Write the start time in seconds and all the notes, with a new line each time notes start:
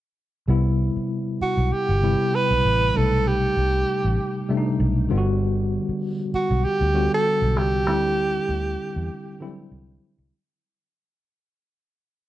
0.48 C2 C3 G3 B3 E4
0.97 muted fingered electric bass stroke
1.41 F#4, muted fingered electric bass stroke
1.57 B1
1.72 G4, muted fingered electric bass stroke
1.89 G1
2.02 C3 G3 B3 E4
2.35 B4
2.51 B1
2.65 A1
2.94 B1 C3 G3 A3 D#4 A4
3.27 G4
3.57 C2
4.04 A1
4.49 C3 G3 A3 D4
4.57 D#4
4.80 B1
5.09 G1 D3 G3 B3 F4
5.18 F#4
5.89 muted fingered electric bass stroke
6.34 F#4, muted fingered electric bass stroke
6.50 B1
6.64 G4, muted fingered electric bass stroke
6.81 D2
6.94 D3 G3 B3 F#4
7.14 A4
7.42 B1
7.56 C2 G4
7.87 D2 D3 G3 C4 E4
8.49 D2
8.96 E2
9.40 D3 F#3 C4 E4
9.47 G3
9.72 C2
10.18 C2